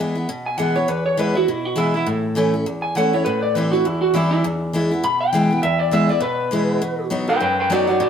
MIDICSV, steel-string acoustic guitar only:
0, 0, Header, 1, 2, 480
1, 0, Start_track
1, 0, Key_signature, 4, "major"
1, 0, Tempo, 296883
1, 1420, Time_signature, 4, 2, 24, 8
1, 13088, End_track
2, 0, Start_track
2, 0, Title_t, "Steel-string acoustic guitar"
2, 0, Program_c, 0, 25
2, 0, Note_on_c, 0, 40, 96
2, 0, Note_on_c, 0, 52, 89
2, 0, Note_on_c, 0, 56, 83
2, 0, Note_on_c, 0, 59, 91
2, 11, Note_on_c, 0, 64, 100
2, 228, Note_off_c, 0, 64, 0
2, 242, Note_off_c, 0, 52, 0
2, 247, Note_on_c, 0, 64, 64
2, 249, Note_off_c, 0, 56, 0
2, 256, Note_off_c, 0, 59, 0
2, 286, Note_on_c, 0, 59, 45
2, 411, Note_off_c, 0, 40, 0
2, 446, Note_off_c, 0, 64, 0
2, 465, Note_off_c, 0, 59, 0
2, 466, Note_on_c, 0, 47, 91
2, 933, Note_on_c, 0, 52, 88
2, 950, Note_on_c, 0, 56, 88
2, 959, Note_on_c, 0, 59, 93
2, 964, Note_on_c, 0, 64, 92
2, 1201, Note_off_c, 0, 64, 0
2, 1205, Note_off_c, 0, 52, 0
2, 1213, Note_off_c, 0, 56, 0
2, 1218, Note_off_c, 0, 59, 0
2, 1221, Note_on_c, 0, 64, 62
2, 1251, Note_on_c, 0, 59, 50
2, 1383, Note_off_c, 0, 47, 0
2, 1413, Note_off_c, 0, 64, 0
2, 1424, Note_on_c, 0, 40, 90
2, 1428, Note_off_c, 0, 59, 0
2, 1898, Note_on_c, 0, 52, 93
2, 1908, Note_on_c, 0, 56, 89
2, 1918, Note_on_c, 0, 59, 88
2, 1927, Note_on_c, 0, 64, 93
2, 2165, Note_off_c, 0, 64, 0
2, 2167, Note_off_c, 0, 52, 0
2, 2172, Note_off_c, 0, 56, 0
2, 2178, Note_off_c, 0, 59, 0
2, 2185, Note_on_c, 0, 64, 61
2, 2219, Note_on_c, 0, 59, 51
2, 2342, Note_off_c, 0, 40, 0
2, 2375, Note_off_c, 0, 64, 0
2, 2391, Note_off_c, 0, 59, 0
2, 2397, Note_on_c, 0, 47, 85
2, 2838, Note_on_c, 0, 52, 98
2, 2848, Note_on_c, 0, 56, 95
2, 2862, Note_on_c, 0, 59, 98
2, 2874, Note_on_c, 0, 64, 97
2, 3116, Note_off_c, 0, 64, 0
2, 3118, Note_off_c, 0, 52, 0
2, 3123, Note_off_c, 0, 56, 0
2, 3129, Note_off_c, 0, 59, 0
2, 3136, Note_on_c, 0, 64, 58
2, 3178, Note_on_c, 0, 59, 45
2, 3308, Note_off_c, 0, 47, 0
2, 3330, Note_off_c, 0, 64, 0
2, 3338, Note_on_c, 0, 45, 94
2, 3351, Note_off_c, 0, 59, 0
2, 3802, Note_on_c, 0, 52, 85
2, 3818, Note_on_c, 0, 57, 96
2, 3830, Note_on_c, 0, 61, 98
2, 3843, Note_on_c, 0, 64, 106
2, 4079, Note_off_c, 0, 52, 0
2, 4080, Note_off_c, 0, 64, 0
2, 4087, Note_off_c, 0, 57, 0
2, 4093, Note_off_c, 0, 61, 0
2, 4100, Note_on_c, 0, 64, 66
2, 4132, Note_on_c, 0, 61, 47
2, 4259, Note_off_c, 0, 45, 0
2, 4292, Note_off_c, 0, 64, 0
2, 4305, Note_on_c, 0, 40, 89
2, 4308, Note_off_c, 0, 61, 0
2, 4771, Note_on_c, 0, 52, 82
2, 4796, Note_on_c, 0, 57, 94
2, 4807, Note_on_c, 0, 61, 99
2, 4817, Note_on_c, 0, 64, 99
2, 5044, Note_off_c, 0, 52, 0
2, 5046, Note_off_c, 0, 64, 0
2, 5057, Note_off_c, 0, 57, 0
2, 5062, Note_off_c, 0, 61, 0
2, 5065, Note_on_c, 0, 64, 60
2, 5099, Note_on_c, 0, 61, 50
2, 5223, Note_off_c, 0, 40, 0
2, 5255, Note_off_c, 0, 64, 0
2, 5267, Note_on_c, 0, 45, 92
2, 5272, Note_off_c, 0, 61, 0
2, 5743, Note_on_c, 0, 52, 92
2, 5762, Note_on_c, 0, 55, 89
2, 5771, Note_on_c, 0, 60, 93
2, 5786, Note_on_c, 0, 64, 94
2, 6010, Note_off_c, 0, 52, 0
2, 6011, Note_off_c, 0, 64, 0
2, 6020, Note_off_c, 0, 55, 0
2, 6025, Note_off_c, 0, 60, 0
2, 6031, Note_on_c, 0, 64, 61
2, 6063, Note_on_c, 0, 60, 49
2, 6184, Note_off_c, 0, 45, 0
2, 6218, Note_off_c, 0, 64, 0
2, 6227, Note_on_c, 0, 40, 86
2, 6234, Note_off_c, 0, 60, 0
2, 6687, Note_on_c, 0, 52, 95
2, 6702, Note_on_c, 0, 55, 101
2, 6715, Note_on_c, 0, 60, 92
2, 6728, Note_on_c, 0, 64, 98
2, 7144, Note_off_c, 0, 40, 0
2, 7154, Note_off_c, 0, 52, 0
2, 7161, Note_off_c, 0, 55, 0
2, 7168, Note_off_c, 0, 60, 0
2, 7175, Note_off_c, 0, 64, 0
2, 7184, Note_on_c, 0, 40, 92
2, 7653, Note_on_c, 0, 52, 87
2, 7667, Note_on_c, 0, 56, 85
2, 7680, Note_on_c, 0, 59, 91
2, 7687, Note_on_c, 0, 64, 105
2, 7926, Note_off_c, 0, 52, 0
2, 7926, Note_off_c, 0, 64, 0
2, 7933, Note_off_c, 0, 56, 0
2, 7939, Note_off_c, 0, 59, 0
2, 7945, Note_on_c, 0, 64, 65
2, 7979, Note_on_c, 0, 59, 53
2, 8103, Note_off_c, 0, 40, 0
2, 8136, Note_off_c, 0, 64, 0
2, 8140, Note_on_c, 0, 47, 92
2, 8152, Note_off_c, 0, 59, 0
2, 8610, Note_on_c, 0, 52, 94
2, 8628, Note_on_c, 0, 56, 97
2, 8640, Note_on_c, 0, 59, 91
2, 8650, Note_on_c, 0, 64, 99
2, 8884, Note_off_c, 0, 52, 0
2, 8885, Note_off_c, 0, 64, 0
2, 8893, Note_off_c, 0, 56, 0
2, 8899, Note_off_c, 0, 59, 0
2, 8905, Note_on_c, 0, 64, 55
2, 8932, Note_on_c, 0, 59, 57
2, 9061, Note_off_c, 0, 47, 0
2, 9095, Note_off_c, 0, 64, 0
2, 9102, Note_on_c, 0, 40, 94
2, 9109, Note_off_c, 0, 59, 0
2, 9561, Note_on_c, 0, 52, 86
2, 9577, Note_on_c, 0, 56, 98
2, 9588, Note_on_c, 0, 59, 88
2, 9595, Note_on_c, 0, 64, 92
2, 9827, Note_off_c, 0, 64, 0
2, 9840, Note_off_c, 0, 52, 0
2, 9846, Note_on_c, 0, 64, 56
2, 9848, Note_off_c, 0, 56, 0
2, 9853, Note_off_c, 0, 59, 0
2, 9887, Note_on_c, 0, 59, 48
2, 10022, Note_off_c, 0, 40, 0
2, 10032, Note_on_c, 0, 47, 89
2, 10046, Note_off_c, 0, 64, 0
2, 10067, Note_off_c, 0, 59, 0
2, 10524, Note_on_c, 0, 52, 86
2, 10541, Note_on_c, 0, 56, 90
2, 10550, Note_on_c, 0, 59, 93
2, 10557, Note_on_c, 0, 64, 104
2, 10967, Note_off_c, 0, 47, 0
2, 10993, Note_off_c, 0, 52, 0
2, 11001, Note_off_c, 0, 56, 0
2, 11006, Note_off_c, 0, 59, 0
2, 11009, Note_off_c, 0, 64, 0
2, 11020, Note_on_c, 0, 47, 89
2, 11482, Note_on_c, 0, 54, 89
2, 11492, Note_on_c, 0, 59, 96
2, 11500, Note_on_c, 0, 63, 89
2, 11511, Note_on_c, 0, 66, 96
2, 11742, Note_off_c, 0, 66, 0
2, 11760, Note_off_c, 0, 54, 0
2, 11761, Note_on_c, 0, 66, 63
2, 11765, Note_off_c, 0, 59, 0
2, 11769, Note_off_c, 0, 63, 0
2, 11800, Note_on_c, 0, 63, 52
2, 11941, Note_off_c, 0, 47, 0
2, 11964, Note_off_c, 0, 66, 0
2, 11971, Note_on_c, 0, 42, 90
2, 11983, Note_off_c, 0, 63, 0
2, 12446, Note_on_c, 0, 54, 96
2, 12457, Note_on_c, 0, 59, 97
2, 12476, Note_on_c, 0, 63, 93
2, 12480, Note_on_c, 0, 66, 104
2, 12708, Note_off_c, 0, 66, 0
2, 12722, Note_off_c, 0, 54, 0
2, 12727, Note_on_c, 0, 66, 63
2, 12728, Note_off_c, 0, 59, 0
2, 12737, Note_off_c, 0, 63, 0
2, 12769, Note_on_c, 0, 63, 50
2, 12896, Note_off_c, 0, 42, 0
2, 12926, Note_off_c, 0, 66, 0
2, 12934, Note_on_c, 0, 47, 92
2, 12947, Note_off_c, 0, 63, 0
2, 13088, Note_off_c, 0, 47, 0
2, 13088, End_track
0, 0, End_of_file